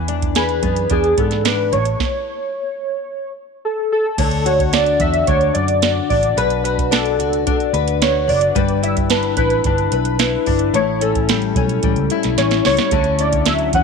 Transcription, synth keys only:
0.37 0.93 B4 medium
0.92 1.19 G#4 medium
1.19 1.47 A4 medium
1.46 1.74 B4 medium
1.73 3.32 C#5 medium
3.65 3.91 A4 medium
3.92 4.48 A4 medium
4.46 4.74 C#5 medium
4.73 5.01 D5 loud
5.01 5.29 E5 loud
5.27 5.56 C#5 loud
5.54 6.08 D5 medium
6.10 6.38 D5 medium
6.37 6.63 B4 medium
6.64 6.92 B4 medium
6.92 7.70 A4 medium
8.02 8.30 C#5 medium
8.29 8.85 D5 medium
8.84 8.96 E5 medium
9.10 9.36 B4 medium
9.37 10.78 B4 medium
10.75 11.03 C#5 medium
11.02 12.34 A4 medium
12.38 12.65 C#5 medium
12.66 13.22 C#5 loud
13.20 13.48 D5 medium
13.47 13.75 E5 loud
13.74 13.84 F#5 loud

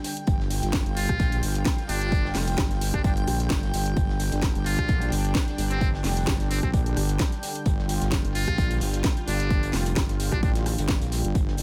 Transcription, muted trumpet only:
0.97 1.43 F4 medium
1.89 2.35 D4 medium
2.94 3.01 D4 medium
3.04 3.12 D4 medium
4.66 5.12 F4 medium
5.71 5.89 C4 medium
6.51 6.59 C4 medium
6.63 6.70 C4 medium
8.35 8.81 F4 loud
9.28 9.74 D4 medium
10.32 10.39 D4 medium
10.43 10.51 D4 medium

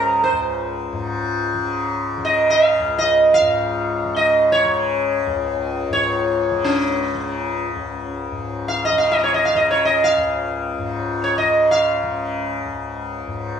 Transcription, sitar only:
0.00 0.23 A#4 medium
0.24 1.52 C5 medium
2.25 2.48 D#5 medium
2.50 2.98 F5 medium
2.99 3.34 D#5 medium
3.34 4.19 F5 medium
4.16 4.52 D#5 medium
4.52 5.92 C#5 medium
5.93 6.66 C#5 medium
6.65 8.04 C#4 medium
8.68 8.84 F5 medium
8.85 8.98 D#5 medium
8.98 9.11 F5 medium
9.12 9.18 D#5 medium
9.19 9.22 D#5 medium
9.24 9.33 C#5 medium
9.34 9.45 D#5 medium
9.45 9.57 F5 medium
9.56 9.70 D#5 medium
9.71 9.83 C#5 medium
9.85 10.04 D#5 medium
10.04 11.27 F5 medium
11.24 11.38 C#5 medium
11.38 11.72 D#5 medium
11.71 13.54 F5 medium

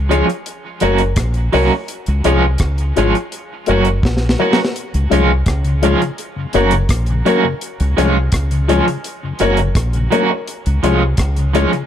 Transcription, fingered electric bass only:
0.00 0.22 C#2 medium
0.83 1.14 F#1 medium
1.17 1.49 A#1 medium
1.54 1.70 C2 medium
2.08 2.23 C#2 medium
2.26 2.56 C2 medium
2.61 2.92 C#2 medium
2.98 3.13 G#1 medium
3.69 4.00 F#1 medium
4.04 4.35 A#1 medium
4.94 5.09 C#2 medium
5.12 5.42 C2 medium
5.47 5.94 C#2 medium
6.55 6.86 F#1 medium
6.90 7.21 A#1 loud
7.80 7.95 C#2 loud
7.98 8.29 C2 medium
8.33 8.80 C#2 loud
9.41 9.72 F#1 medium
9.76 10.07 A#1 medium
10.67 10.81 C#2 medium
10.84 11.14 C2 medium
11.19 11.65 C#2 medium

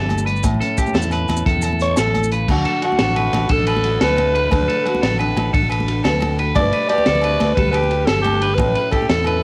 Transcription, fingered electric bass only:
0.00 0.40 G1 loud
0.44 0.60 A1 loud
0.95 1.26 E2 medium
1.29 1.45 E2 loud
1.46 1.93 E2 loud
1.98 2.45 A1 loud
2.49 2.64 D2 loud
3.00 3.31 A1 medium
3.33 3.49 A1 loud
3.50 3.97 A1 medium
4.01 4.48 D2 loud
4.52 4.67 D2 loud
5.03 5.34 A1 medium
5.36 5.52 A1 loud
5.54 6.01 A1 medium
6.05 6.52 D2 loud
6.55 6.71 G1 loud
7.07 7.38 D2 medium
7.41 7.56 D2 loud
7.57 8.04 D2 loud
8.08 8.55 G1 loud
8.59 8.75 A1 loud
9.10 9.41 E2 medium

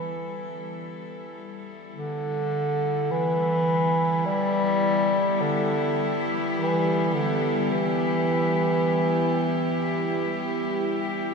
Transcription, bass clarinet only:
0.00 0.78 E3 loud
1.95 3.13 D3 medium
3.11 4.27 E3 medium
4.26 5.43 G3 loud
5.41 6.28 D3 medium
6.57 7.16 E3 medium
7.14 7.71 D3 medium
7.72 10.55 E3 medium

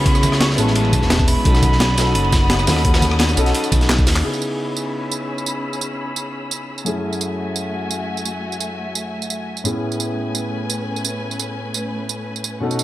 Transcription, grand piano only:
0.00 0.05 B3 medium
0.00 0.05 C#4 medium
0.00 0.06 E4 medium
0.00 0.07 G#4 medium
0.05 0.56 B3 medium
0.05 0.56 C#4 medium
0.05 0.56 E4 medium
0.05 0.57 G#4 medium
0.57 1.44 G#3 loud
0.57 1.43 B3 loud
0.57 1.43 C#4 medium
0.57 1.44 E4 medium
1.44 1.95 C#4 medium
1.44 1.96 D#4 medium
1.44 1.96 F#4 medium
1.44 1.96 A4 medium
1.96 2.65 C#4 medium
1.96 2.65 D#4 medium
1.96 2.66 F#4 medium
1.96 2.66 A4 loud
2.67 2.82 C#4 medium
2.67 2.83 D#4 medium
2.67 2.83 F#4 medium
2.67 2.83 A4 medium
2.84 3.34 C#4 medium
2.84 3.35 D#4 medium
2.84 3.35 F#4 medium
2.84 3.36 A4 medium
3.36 4.22 C#4 loud
3.36 4.22 D#4 medium
3.36 4.23 F#4 medium
3.36 4.23 A4 loud
4.23 6.83 C#3 medium
4.23 6.84 B3 medium
4.23 6.84 D#4 medium
4.23 6.84 E4 medium
4.23 6.85 G#4 medium
6.85 9.63 F#2 medium
6.85 9.63 A3 medium
6.85 9.63 C#4 medium
6.85 9.63 E4 medium
6.85 9.64 G#4 medium
9.64 12.42 A2 medium
9.64 12.42 B3 medium
9.64 12.42 C#4 medium
9.64 12.42 E4 medium
9.64 12.43 G#4 medium
12.60 12.84 B2 medium
12.60 12.84 C#4 medium
12.60 12.84 D#4 medium
12.60 12.84 F#4 medium
12.60 12.84 A4 medium

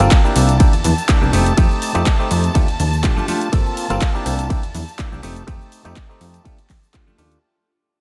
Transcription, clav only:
0.00 0.21 A#3 medium
0.00 0.21 C4 medium
0.00 0.21 F4 medium
0.00 0.21 A4 medium
0.24 0.57 A#3 medium
0.24 0.57 D4 medium
0.24 0.57 E4 medium
0.24 0.58 G4 medium
0.60 0.73 A#3 medium
0.60 0.73 D4 medium
0.60 0.73 E4 medium
0.60 0.73 G4 loud
1.08 1.20 A#3 medium
1.08 1.20 D4 medium
1.08 1.20 E4 medium
1.08 1.20 G4 medium
1.21 1.31 A#3 medium
1.21 1.31 D4 medium
1.21 1.31 E4 medium
1.21 1.32 G4 medium
1.33 1.53 A3 medium
1.33 1.53 C4 medium
1.33 1.53 D#4 medium
1.33 1.53 G4 medium
1.57 1.92 A3 loud
1.57 1.92 C4 medium
1.57 1.92 D#4 medium
1.57 1.92 G4 loud
1.94 2.16 A3 medium
1.94 2.16 C4 medium
1.94 2.16 D#4 medium
1.94 2.16 G4 loud
2.19 2.52 A3 medium
2.19 2.52 C4 medium
2.19 2.52 D#4 medium
2.19 2.53 G4 loud
2.55 2.68 A3 medium
2.55 2.68 D4 medium
2.55 2.68 F4 medium
2.55 2.68 G4 loud
3.03 3.15 A3 medium
3.03 3.15 D4 medium
3.03 3.15 F4 medium
3.03 3.15 G4 loud
3.17 3.26 A3 medium
3.17 3.27 D4 medium
3.17 3.27 F4 medium
3.17 3.27 G4 medium
3.28 3.48 A3 medium
3.28 3.48 D4 medium
3.28 3.48 F4 medium
3.28 3.48 G4 medium
3.52 3.87 A#3 medium
3.52 3.87 C4 medium
3.52 3.87 F4 medium
3.52 3.87 A4 loud
3.90 4.11 A#3 medium
3.90 4.11 C4 medium
3.90 4.11 F4 medium
3.90 4.12 A4 loud
4.14 4.47 A#3 medium
4.14 4.47 D4 medium
4.14 4.48 E4 medium
4.14 4.48 G4 medium
4.50 4.63 A#3 medium
4.50 4.63 D4 medium
4.50 4.63 E4 medium
4.50 4.63 G4 loud
4.98 5.10 A#3 medium
4.98 5.10 D4 medium
4.98 5.10 E4 medium
4.98 5.10 G4 medium
5.12 5.21 A#3 medium
5.12 5.22 D4 medium
5.12 5.22 E4 medium
5.12 5.22 G4 medium
5.23 5.43 A3 medium
5.23 5.43 C4 medium
5.23 5.43 D#4 medium
5.23 5.43 G4 medium
5.47 5.82 A3 loud
5.47 5.82 C4 medium
5.47 5.82 D#4 medium
5.47 5.82 G4 loud
5.85 6.06 A3 medium
5.85 6.06 C4 medium
5.85 6.06 D#4 medium
5.85 6.07 G4 loud
6.09 6.42 A3 medium
6.09 6.42 C4 medium
6.09 6.43 D#4 medium
6.09 6.43 G4 medium
6.45 6.58 A3 loud
6.45 6.58 D4 medium
6.45 6.58 F4 medium
6.45 6.59 G4 loud
6.93 7.05 A3 medium
6.93 7.05 D4 medium
6.93 7.05 F4 medium
6.93 7.05 G4 medium
7.07 7.17 A3 medium
7.07 7.17 D4 medium
7.07 7.17 F4 medium
7.07 7.17 G4 medium
7.18 7.38 A3 medium
7.18 7.38 D4 medium
7.18 7.38 F4 medium
7.18 7.39 G4 medium

